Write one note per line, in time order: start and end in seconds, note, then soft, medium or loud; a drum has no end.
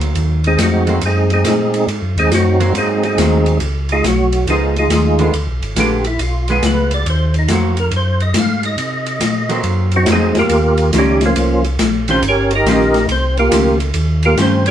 0.00 0.15 D2 medium
0.00 0.39 F#3 medium
0.00 0.39 A#3 medium
0.00 0.39 C4 medium
0.00 ride soft
0.15 0.57 D#2 medium
0.15 ride medium
0.44 0.60 G#3 medium
0.44 0.60 C4 medium
0.44 0.60 D#4 medium
0.44 0.60 G#4 medium
0.44 ride soft
0.58 1.00 F2 loud
0.58 snare medium
0.58 hi-hat pedal medium
0.58 ride medium
0.62 1.01 G#3 medium
0.62 1.01 C4 medium
0.62 1.01 D#4 medium
0.62 1.01 F#4 medium
0.87 1.01 F#3 medium
0.87 1.01 A#3 medium
0.87 1.02 C4 medium
0.87 ride soft
1.01 1.44 F#2 medium
1.01 ride medium
1.06 1.32 G#3 medium
1.06 1.31 C4 medium
1.06 1.32 D#4 medium
1.06 1.32 G#4 medium
1.30 1.86 G#3 medium
1.30 1.86 C4 medium
1.30 1.86 D#4 medium
1.30 1.86 G#4 medium
1.30 ride soft
1.44 1.86 A#2 medium
1.44 snare medium
1.44 hi-hat pedal medium
1.44 ride medium
1.74 ride soft
1.87 2.02 G#2 medium
1.87 ride medium
2.02 2.17 F#2 medium
2.16 2.30 D#2 medium
2.16 2.32 G#3 medium
2.16 2.32 C4 medium
2.16 2.32 D#4 medium
2.16 2.32 G#4 medium
2.16 ride soft
2.30 2.72 F#2 medium
2.30 snare medium
2.30 hi-hat pedal medium
2.30 ride medium
2.34 2.73 F#3 medium
2.34 2.73 C4 medium
2.34 2.73 D#4 medium
2.34 2.73 F#4 medium
2.60 3.15 F#3 medium
2.60 3.15 A#3 medium
2.60 3.16 C4 medium
2.60 ride medium
2.73 3.16 G#2 medium
2.73 ride medium
2.78 3.04 G#3 soft
2.78 3.04 C4 medium
2.78 3.04 D#4 medium
2.78 3.03 G#4 medium
3.03 3.58 G#3 medium
3.03 3.58 C4 medium
3.03 3.58 D#4 medium
3.03 3.58 G#4 medium
3.03 ride soft
3.18 3.60 D#2 medium
3.18 3.61 F#3 medium
3.18 3.62 A#3 medium
3.18 3.62 C4 medium
3.18 snare medium
3.18 hi-hat pedal medium
3.18 ride medium
3.46 ride soft
3.60 4.02 C#2 medium
3.60 ride medium
3.89 4.05 G#3 medium
3.89 4.05 D#4 medium
3.89 4.05 F4 medium
3.89 4.05 G#4 medium
3.89 ride soft
4.04 4.46 B1 loud
4.04 4.46 F#4 medium
4.04 snare medium
4.04 hi-hat pedal medium
4.04 ride medium
4.08 4.46 F#3 medium
4.32 ride medium
4.47 4.89 C#2 medium
4.47 4.73 F3 medium
4.47 4.76 G#3 soft
4.47 4.74 B3 medium
4.47 4.74 D#4 medium
4.47 4.76 D#4 soft
4.47 4.76 F4 medium
4.47 4.76 G#4 medium
4.47 ride medium
4.76 5.31 G#3 medium
4.76 5.31 D#4 medium
4.76 5.31 F4 medium
4.76 5.31 G#4 medium
4.76 ride soft
4.88 5.31 D#2 medium
4.88 snare medium
4.88 hi-hat pedal medium
4.88 ride medium
5.19 5.32 D3 medium
5.19 5.33 G#3 medium
5.19 5.33 B3 medium
5.19 5.33 F4 medium
5.19 ride soft
5.33 5.47 D2 medium
5.33 ride medium
5.47 5.62 B1 medium
5.61 5.75 G#1 medium
5.61 ride soft
5.76 6.18 A#1 medium
5.76 6.03 D3 medium
5.76 6.03 G#3 medium
5.76 6.03 B3 medium
5.76 6.03 F4 medium
5.76 snare medium
5.76 hi-hat pedal medium
5.76 ride medium
5.80 6.06 G4 medium
6.04 6.20 E4 medium
6.04 ride soft
6.19 6.61 B1 medium
6.19 6.49 F4 medium
6.19 ride medium
6.48 7.04 G#3 medium
6.48 7.04 B3 medium
6.48 7.04 F4 medium
6.48 6.64 G#4 medium
6.48 ride soft
6.62 7.04 C#2 medium
6.62 snare medium
6.62 hi-hat pedal medium
6.62 ride medium
6.67 6.92 B4 medium
6.91 7.07 D5 loud
6.91 ride medium
7.06 7.48 D#2 medium
7.06 7.36 C5 medium
7.06 ride medium
7.34 ride soft
7.39 7.51 D#4 medium
7.48 7.91 F2 medium
7.48 7.75 F#3 medium
7.48 7.76 A#3 medium
7.48 7.76 C4 medium
7.48 snare medium
7.48 hi-hat pedal medium
7.48 ride medium
7.53 7.79 F#4 medium
7.77 7.93 A#4 medium
7.77 ride soft
7.91 8.33 F#2 medium
7.91 ride medium
7.96 8.22 C5 medium
8.20 8.36 D#5 loud
8.20 ride soft
8.34 8.76 G#2 medium
8.34 snare medium
8.34 hi-hat pedal medium
8.34 ride medium
8.38 8.64 F5 medium
8.63 9.61 D#5 loud
8.63 ride soft
8.78 9.20 C3 medium
8.78 ride medium
9.06 ride soft
9.21 9.63 A#2 medium
9.21 snare medium
9.21 hi-hat pedal medium
9.21 ride medium
9.49 10.04 F#3 medium
9.49 10.05 A#3 medium
9.49 10.05 C4 medium
9.49 ride soft
9.63 10.06 F#2 medium
9.63 ride medium
9.91 ride soft
9.96 10.09 F#3 medium
9.96 10.09 C4 medium
9.96 10.09 D#4 medium
9.96 10.09 F#4 medium
10.06 10.33 F2 medium
10.06 10.51 F#3 medium
10.06 10.51 A#3 medium
10.06 10.52 C4 medium
10.06 snare medium
10.06 hi-hat pedal medium
10.06 ride medium
10.12 10.38 G#3 medium
10.12 10.38 C4 medium
10.12 10.38 D#4 medium
10.12 10.37 G#4 medium
10.35 10.43 F2 soft
10.35 10.91 A#4 medium
10.35 snare medium
10.35 ride medium
10.39 10.91 A#3 medium
10.39 10.91 F4 medium
10.39 10.91 G4 medium
10.49 10.92 D#2 medium
10.49 ride medium
10.77 ride medium
10.93 11.35 C#2 medium
10.93 11.19 D#3 medium
10.93 11.19 G3 medium
10.93 11.20 C#4 medium
10.93 11.20 F4 medium
10.93 snare medium
10.93 hi-hat pedal medium
10.93 ride medium
10.98 11.24 G3 medium
10.98 11.23 C#4 medium
10.98 11.24 D#4 medium
10.98 11.23 G4 medium
11.21 snare soft
11.21 ride medium
11.26 11.64 F3 medium
11.26 11.64 A#3 medium
11.26 11.64 C#4 medium
11.26 11.64 F4 medium
11.36 11.78 C2 medium
11.36 ride medium
11.64 ride soft
11.79 12.21 A#1 medium
11.79 snare medium
11.79 hi-hat pedal medium
11.79 ride medium
12.08 12.21 D#3 medium
12.08 12.21 G3 medium
12.08 12.23 C4 medium
12.08 12.22 C#4 medium
12.08 12.22 F4 medium
12.08 12.23 C5 loud
12.08 ride medium
12.21 12.63 G1 medium
12.21 ride medium
12.28 12.53 C#4 medium
12.28 12.53 G4 medium
12.28 12.53 A#4 medium
12.28 12.53 C#5 medium
12.51 ride medium
12.55 13.07 D#4 medium
12.55 13.07 G4 medium
12.55 13.07 A#4 medium
12.55 13.07 D#5 loud
12.64 13.06 A#1 medium
12.64 12.91 D#3 medium
12.64 12.92 G3 medium
12.64 12.92 C#4 medium
12.64 12.92 F4 medium
12.64 snare medium
12.64 hi-hat pedal medium
12.64 ride medium
12.80 snare soft
12.94 snare soft
12.94 ride soft
13.08 13.50 C2 medium
13.08 13.37 C5 medium
13.08 ride medium
13.12 13.37 C4 medium
13.37 13.78 A#3 medium
13.37 13.78 F4 medium
13.37 13.78 G4 medium
13.37 13.78 A#4 medium
13.37 ride soft
13.51 13.93 C#2 medium
13.51 13.76 D#3 soft
13.51 13.77 G3 medium
13.51 13.77 C#4 medium
13.51 13.77 F4 medium
13.51 snare medium
13.51 hi-hat pedal medium
13.51 ride medium
13.80 ride medium
13.94 14.35 D#2 medium
13.94 ride medium
14.23 14.39 A#3 medium
14.23 14.38 F4 medium
14.23 14.38 G4 medium
14.23 14.38 A#4 medium
14.23 ride medium
14.35 14.71 G2 loud
14.35 14.63 D#3 medium
14.35 14.63 G3 medium
14.35 14.63 C#4 medium
14.35 14.63 F4 medium
14.35 snare medium
14.35 hi-hat pedal soft
14.35 ride medium
14.42 14.67 C4 medium
14.42 14.67 C5 medium
14.66 14.71 C#4 medium
14.66 14.71 C#5 loud
14.66 ride medium